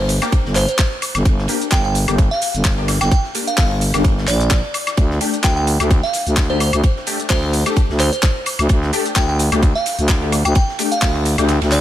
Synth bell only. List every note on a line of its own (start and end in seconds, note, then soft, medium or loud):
0.56 0.64 C5 medium
0.68 0.75 C5 medium
1.72 1.80 G5 medium
1.85 1.91 G5 medium
2.31 2.50 F5 medium
3.01 3.08 G5 medium
3.11 3.20 G5 medium
3.47 3.54 F5 medium
3.58 3.66 F5 medium
4.28 4.93 D5 medium
5.44 5.52 G5 medium
5.57 5.63 G5 medium
6.03 6.22 F5 medium
6.50 6.57 C5 medium
6.60 6.69 C5 medium
7.30 7.50 C5 medium
8.00 8.08 C5 medium
8.13 8.19 C5 medium
9.16 9.24 G5 medium
9.29 9.36 G5 medium
9.75 9.94 F5 medium
10.45 10.52 G5 medium
10.56 10.64 G5 medium
10.92 10.98 F5 medium
11.72 11.81 D5 medium